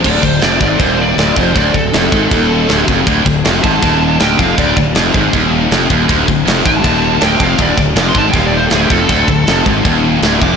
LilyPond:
<<
  \new Staff \with { instrumentName = "Lead electric guitar" } { \time 4/4 \key c \mixolydian \tempo 4 = 159 d''8 c''8 d''8 d''8 c''8 d''8 d''8 c''8 | d''8 a'2. r8 | r4. a''4. g''8 f''8 | d''8 r2. r8 |
r4. a''4. g''8 f''8 | d''8 r8 d'''16 c'''16 a''16 g''16 f''16 d''16 c''16 a'16 gis'16 g'16 a'8~ | a'4. r2 d'''8 | }
  \new Staff \with { instrumentName = "Distorted electric guitar" } { \clef bass \time 4/4 \key c \mixolydian d,8 d,8 f,8 gis,8 ees,4 d,8 f,8 | d,8 d,8 f,8 gis,8 ees,4 d,8 f,8 | d,8 d,8 f,8 gis,8 ees,4 d,8 f,8 | d,8 d,8 f,8 gis,8 ees,4 f,8 ees,8 |
d,8 d,8 f,8 gis,8 ees,4 d,8 f,8 | d,8 d,8 f,8 gis,8 ees,4 d,8 f,8 | d,8 d,8 f,8 gis,8 ees,4 d,8 f,8 | }
  \new Staff \with { instrumentName = "Distorted electric guitar" } { \clef bass \time 4/4 \key c \mixolydian d,8 d,8 f,8 gis,8 ees,4 d,8 f,8 | d,8 d,8 f,8 gis,8 ees,4 d,8 f,8 | d,8 d,8 f,8 gis,8 ees,4 d,8 f,8 | d,8 d,8 f,8 gis,8 ees,4 f,8 ees,8 |
d,8 d,8 f,8 gis,8 ees,4 d,8 f,8 | d,8 d,8 f,8 gis,8 ees,4 d,8 f,8 | d,8 d,8 f,8 gis,8 ees,4 d,8 f,8 | }
  \new Staff \with { instrumentName = "Fingered electric bass" } { \clef bass \time 4/4 \key c \mixolydian d,,8 d,,8 f,,8 gis,,8 ees,,4 d,,8 f,,8 | d,,8 d,,8 f,,8 gis,,8 ees,,4 d,,8 f,,8 | d,,8 d,,8 f,,8 gis,,8 ees,,4 d,,8 f,,8 | d,,8 d,,8 f,,8 gis,,8 ees,,4 f,,8 ees,,8 |
d,,8 d,,8 f,,8 gis,,8 ees,,4 d,,8 f,,8 | d,,8 d,,8 f,,8 gis,,8 ees,,4 d,,8 f,,8 | d,,8 d,,8 f,,8 gis,,8 ees,,4 d,,8 f,,8 | }
  \new DrumStaff \with { instrumentName = "Drums" } \drummode { \time 4/4 <cymc bd>8 bd8 <cymc sn>8 bd8 <cymc bd>4 <cymc sn>8 bd8 | <cymc bd>8 bd8 <cymc sn>8 bd8 <cymc bd>4 <cymc sn>8 bd8 | <cymc bd>8 bd8 <cymc sn>8 bd8 <cymc bd>4 <cymc sn>8 bd8 | <cymc bd>8 bd8 <cymc sn>8 bd8 <cymc bd>4 <cymc sn>8 bd8 |
<cymc bd>8 bd8 <cymc sn>8 bd8 <cymc bd>4 <cymc sn>8 bd8 | <cymc bd>8 bd8 <cymc sn>8 bd8 <cymc bd>4 <cymc sn>8 bd8 | <cymc bd>8 bd8 <cymc sn>8 bd8 <cymc bd>4 <cymc sn>8 bd8 | }
>>